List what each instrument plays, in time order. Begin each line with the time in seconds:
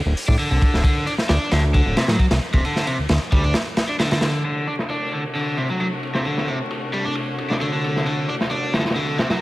0.06 analog synth bass D1
0.17 open hi-hat
0.28 analog synth bass A2, overdriven electric guitar D4, kick
0.39 overdriven electric guitar D3, ride
0.51 analog synth bass C2, overdriven electric guitar D3
0.62 kick, ride
0.73 analog synth bass D1, snare
0.84 overdriven electric guitar D3, kick, ride
1.06 overdriven electric guitar D4, ride
1.18 snare
1.29 analog synth bass D2, overdriven electric guitar D4, snare, ride
1.51 analog synth bass D2, overdriven electric guitar D3, snare, ride
1.74 overdriven electric guitar D3, kick, ride
1.86 analog synth bass D1
1.97 overdriven electric guitar C3, snare, ride
2.08 analog synth bass A2, overdriven electric guitar F#3, snare, ride
2.19 overdriven electric guitar F#3, kick, ride
2.31 analog synth bass C2, snare, ride
2.42 ride
2.53 analog synth bass D1, overdriven electric guitar C3, kick, ride
2.65 overdriven electric guitar D3, ride
2.76 snare
2.87 overdriven electric guitar C3, ride
2.99 analog synth bass D2
3.09 analog synth bass D2, snare, ride
3.32 analog synth bass D2, overdriven electric guitar G3, kick, ride
3.44 overdriven electric guitar D4, ride
3.54 snare, ride
3.77 snare, ride
3.89 overdriven electric guitar D4
3.99 overdriven electric guitar D3, snare, ride
4.11 overdriven electric guitar D3, snare, ride
4.21 snare, ride
4.45 string section C3 A3 D4 F#4, overdriven electric guitar D3, ride
4.67 overdriven electric guitar D4, ride
4.79 snare
4.89 overdriven electric guitar D4, ride
5.12 overdriven electric guitar D3, ride
5.35 overdriven electric guitar D3, open hi-hat
5.57 overdriven electric guitar C3, ride
5.70 overdriven electric guitar F#3
5.80 overdriven electric guitar F#3, ride
6.03 ride
6.14 overdriven electric guitar C3, snare
6.25 overdriven electric guitar D3, ride
6.37 snare
6.48 overdriven electric guitar C3, ride
6.71 ride
6.93 overdriven electric guitar G3, ride
7.05 overdriven electric guitar D4, ride
7.15 ride
7.38 ride
7.50 overdriven electric guitar D4, snare
7.61 overdriven electric guitar D3, ride
7.73 overdriven electric guitar D3, ride
7.84 ride
7.96 snare
8.06 overdriven electric guitar D3, ride
8.28 overdriven electric guitar D4, ride
8.41 snare
8.51 overdriven electric guitar D4, ride
8.73 overdriven electric guitar D3, snare, ride
8.79 snare, ride
8.85 snare, ride
8.90 snare, ride
8.96 overdriven electric guitar D3, open hi-hat
9.18 overdriven electric guitar C3, snare, ride
9.30 overdriven electric guitar F#3, snare, ride